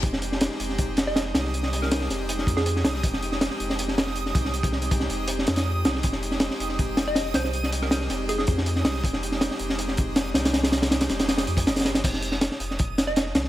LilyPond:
<<
  \new Staff \with { instrumentName = "Synth texture" } { \time 4/4 \key f \minor \tempo 4 = 160 ees'''1~ | ees'''1~ | ees'''1~ | ees'''1~ |
ees'''1~ | ees'''1~ | ees'''1~ | ees'''1 |
r1 | }
  \new Staff \with { instrumentName = "Synth pluck" } { \time 4/4 \key f \minor r2 r8. ees''8 r8. | r8. bes'8 r4. aes'8. r8 | r1 | r1 |
r2 r8. ees''8 r16 c''8 | r8. bes'8. r8 aes'16 aes'16 r4. | r1 | r1 |
r2 r8. ees''8 r8. | }
  \new Staff \with { instrumentName = "Analog synth pad" } { \time 4/4 \key f \minor <aes c' ees' g'>2.~ <aes c' ees' g'>8 r8 | <aes c' ees' g'>2.~ <aes c' ees' g'>8 r8 | <aes c' ees' g'>2.~ <aes c' ees' g'>8 r8 | <aes c' ees' g'>2.~ <aes c' ees' g'>8 r8 |
<aes c' ees' g'>2.~ <aes c' ees' g'>8 r8 | <aes c' ees' g'>2.~ <aes c' ees' g'>8 r8 | <aes c' ees' g'>2.~ <aes c' ees' g'>8 r8 | <aes c' ees' g'>2.~ <aes c' ees' g'>8 r8 |
r1 | }
  \new Staff \with { instrumentName = "Sub bass" } { \clef bass \time 4/4 \key f \minor f,,4 r8 f,,2 c,8~ | c,4. f,,4 f,4 c,8 | f,,4 r8 f,,2 c,8~ | c,4. f,,4 f,4 c,8 |
f,,4 r8 f,,2 c,8~ | c,4. f,,4 f,4 c,8 | f,,4 r8 f,,2 c,8~ | c,4. f,,4 f,8 f,,8 g,,8 |
f,,4 r8 f,,2 c,8 | }
  \new DrumStaff \with { instrumentName = "Drums" } \drummode { \time 4/4 <hh bd>16 sn16 hh16 sn16 <hh sn>16 sn16 hh16 sn16 <hh bd>8 <hh sn>16 sn16 <hh sn>16 sn16 <hh sn>16 sn16 | hh16 sn16 hh16 sn16 <hh sn>16 sn16 <hh sn>8 hh16 sn16 <hh bd>16 sn16 hh16 sn16 <hh sn>16 sn16 | <hh bd>16 sn16 hh16 sn16 <hh sn>16 sn16 hh16 sn16 hh16 sn16 <hh sn>16 sn16 hh16 sn16 <hh bd>16 sn16 | hh16 <hh bd>16 sn16 hh16 <hh bd>16 sn16 hh8 hh16 sn16 <hh sn>16 <hh sn>16 r8 <hh sn>16 sn16 |
<hh bd>16 sn16 hh16 sn16 <hh sn>16 sn16 hh16 sn16 <hh bd>8 <hh sn>16 sn16 <hh sn>16 sn16 <hh sn>16 sn16 | hh16 sn16 hh16 sn16 <hh sn>16 sn16 <hh sn>8 hh16 sn16 <hh bd>16 sn16 hh16 sn16 <hh sn>16 sn16 | <hh bd>16 sn16 hh16 sn16 <hh sn>16 sn16 hh16 sn16 hh16 sn16 <hh bd>8 <hh sn>16 sn16 <hh sn>16 <hh sn>16 | <hh sn>16 <hh sn>16 <hh sn>16 <hh sn>16 <hh sn>16 <hh sn>16 <hh sn>16 <hh sn>16 <hh sn>16 <hh sn>16 hh16 <hh bd>16 <hh sn>16 <hh sn>32 <hh sn>32 <hh sn>16 <hh sn>16 |
<cymc hh bd>16 sn16 hh16 sn16 <hh sn>16 sn16 hh16 sn16 <hh bd>8 <hh sn>16 sn16 <hh sn>16 sn16 <hh sn>16 sn16 | }
>>